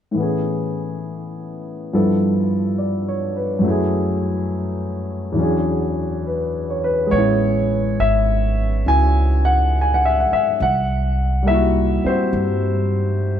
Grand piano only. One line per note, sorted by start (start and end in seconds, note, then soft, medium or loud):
0.11 1.89 A2 soft
0.11 1.90 E3 soft
0.17 1.92 B3 soft
0.17 1.93 C#4 soft
0.23 1.95 G#4 soft
1.93 3.65 G2 soft
1.93 3.65 F3 soft
1.93 3.65 B3 soft
1.93 3.65 E4 soft
1.93 3.65 A4 soft
2.78 3.32 D5 soft
3.08 3.52 C#5 soft
3.36 3.80 B4 soft
3.59 5.34 F#2 soft
3.59 5.35 F#3 soft
3.64 5.36 A3 soft
3.64 5.38 E4 soft
3.70 5.39 G#4 soft
5.32 7.10 E2 soft
5.32 7.11 E3 soft
5.37 7.12 F#3 soft
5.37 7.13 C#4 soft
5.37 7.14 D4 soft
5.43 7.15 G#4 soft
6.27 6.83 B4 soft
6.70 7.10 C#5 soft
6.84 7.10 B4 medium
7.07 10.58 G#3 soft
7.11 10.60 B3 soft
7.11 8.85 C#4 soft
7.11 8.02 C#5 medium
7.18 8.86 E4 soft
8.00 8.90 E5 medium
8.86 10.60 C#4 soft
8.86 10.61 E4 soft
8.86 10.62 F#4 soft
8.86 9.48 G#5 medium
9.45 9.84 F#5 medium
9.81 9.95 G#5 medium
9.94 10.07 F#5 medium
10.05 10.19 E5 medium
10.20 10.32 F#5 medium
10.33 10.59 E5 medium
10.62 11.44 F#5 medium
11.43 13.40 G3 soft
11.43 13.40 A#3 soft
11.48 13.40 E4 soft
11.48 12.01 E5 medium
11.54 12.06 F#4 medium
12.04 13.40 C4 soft
12.04 13.40 F#4 soft
12.04 13.40 C5 medium